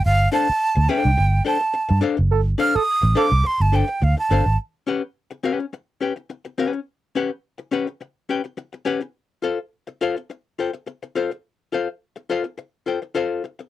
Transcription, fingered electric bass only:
X:1
M:4/4
L:1/16
Q:1/4=105
K:Glyd
V:1 name="Fingered electric bass" clef=bass
G,,,2 z3 D,, z =C,, G,,,2 z3 G,, z F,,, | G,,,2 z3 A,,, z =C,, z G,,,2 z D,, z G,,, ^G,,, | z16 | z16 |
z16 | z16 |]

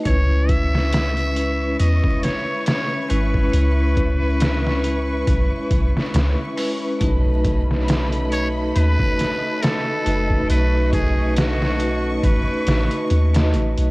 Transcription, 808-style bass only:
X:1
M:4/4
L:1/16
Q:"Swing 16ths" 1/4=69
K:C#m
V:1 name="808-style bass" clef=bass
C,,8 E,, z4 z G,,,2 | C,,8 B,,, z B,,, z C,, z3 | B,,,8 D,, z4 z F,,,2 | B,,,8 A,,, z A,,, z D,,2 A,,, B,,, |]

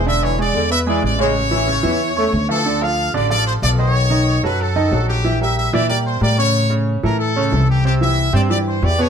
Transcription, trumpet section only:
X:1
M:4/4
L:1/8
Q:1/4=185
K:Aphr
V:1 name="Trumpet section"
e ^c d2 e d d c- | ^c6- c A- | A f2 d d c d ^c- | ^c3 =B A3 G- |
G e e d d c d ^c- | ^c z2 B A3 G | G e2 d d c d ^c |]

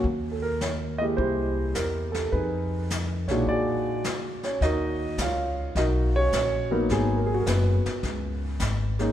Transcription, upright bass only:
X:1
M:4/4
L:1/8
Q:"Swing" 1/4=105
K:Ebm
V:1 name="Upright bass" clef=bass
E,,4 =C,,2 =E,,2 | F,,3 C,, z4 | E,,2 D,,2 C,,2 B,,,2 | A,,,2 G,,, z D,,2 A,,,2 |]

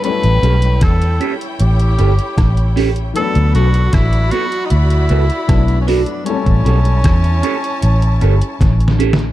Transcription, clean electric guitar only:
X:1
M:4/4
L:1/8
Q:1/4=77
K:Amix
V:1 name="Clean electric guitar"
z [CGA] z [CGA] z [CGA] z [CGA] | z [B,FA] z [B,FA] z [B,FA] z [B,FA] | z [CGA] z [CGA] z [CGA] z [CGA] |]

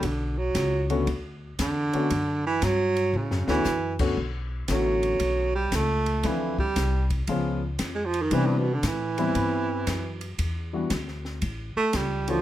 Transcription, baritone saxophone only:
X:1
M:4/4
L:1/16
Q:"Swing" 1/4=116
K:Bm
V:1 name="Baritone saxophone" clef=bass
D,2 F,4 z6 D,4- | D,2 E,2 F,4 C,2 E,4 z2 | z4 F,6 G,2 A,4 | E,2 G,4 z6 z ^G, ^E, ^D, |
E, G,, B,, D, E,12 | z8 z2 A,2 G,2 ^E,2 |]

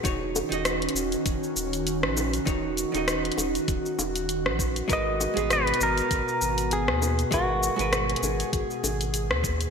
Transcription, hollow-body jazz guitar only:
X:1
M:4/4
L:1/16
Q:"Swing 16ths" 1/4=99
K:G#m
V:1 name="Hollow-body jazz guitar"
[D,DFc]3 [D,DFd]12- [D,DFd] | [D,DFc]3 [D,DFd]12- [D,DFd] | [G,FAB]3 [G,B,FG]12- [G,B,FG] | [G,FAB]3 [G,FAB]12- [G,FAB] |]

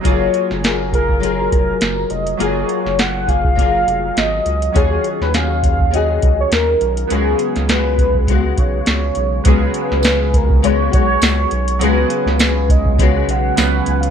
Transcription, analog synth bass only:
X:1
M:4/4
L:1/16
Q:"Swing 16ths" 1/4=102
K:C#mix
V:1 name="Analog synth bass" clef=bass
F,,,2 z F,,,6- F,,, E,,,2 F,,,2 E,,,2 | F,,,2 z F,,,6- F,,, E,,,2 G,,,2 C,,2 | D,,2 z D,,6- D,, C,,2 D,,2 B,,,2 | C,,2 z C,,6- C,, B,,,2 C,,2 B,,,2 |
C,,2 z C,,6- C,, B,,,2 C,,2 B,,,2 | C,,2 z C,,6- C,, B,,,2 C,,2 C,,2 |]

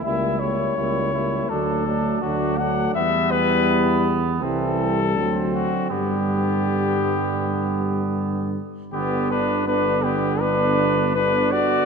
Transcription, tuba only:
X:1
M:4/4
L:1/8
Q:1/4=81
K:G
V:1 name="Tuba" clef=bass
^C,,2 C,,2 D,,2 D,,2 | E,,4 C,,2 D,,2 | G,,6- G,, z | G,,,8 |]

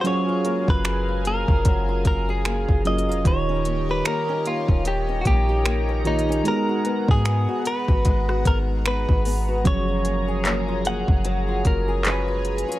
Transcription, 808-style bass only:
X:1
M:4/4
L:1/16
Q:"Swing 16ths" 1/4=75
K:F#
V:1 name="808-style bass" clef=bass
z3 F,,,4 F,,, F,,,2 F,,,3 F,,,2 E,,, | D,,,4 z3 D,,,3 A,,,6 | z3 G,,2 z2 G,,, G,,,2 G,,,3 G,,,3 | F,,,6- F,,, F,,,3 F,,,4- F,,, z |]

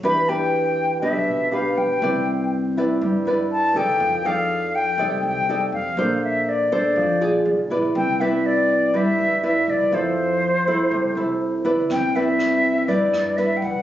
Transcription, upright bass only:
X:1
M:4/4
L:1/8
Q:1/4=122
K:C
V:1 name="Upright bass" clef=bass
E,,4 B,,, B,,,2 E,, | C,,4 G,, G,,2 C,, | F,,4 C,, C,,2 F,, | _B,,,4 F,, B,,, =B,,, _B,,, |
C,,4 G,, G,,2 C,, | F,,4 C,, C,,2 D,, | C,,4 G,, G,,2 C,, |]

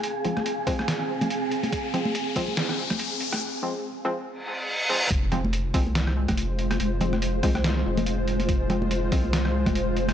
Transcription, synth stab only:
X:1
M:4/4
L:1/8
Q:"Swing 16ths" 1/4=142
K:Fm
V:1 name="Synth stab" clef=bass
z [F,A,C] z [F,A,C] z4 | z [F,A,C] z [F,A,C] z4 | z [F,A,C] z [F,A,C] z3 [F,A,C] | z [F,A,C] z [F,A,C] z4 |
z [F,A,C] z [F,A,C] z4 | z [F,A,C] z [F,A,C] z4 |]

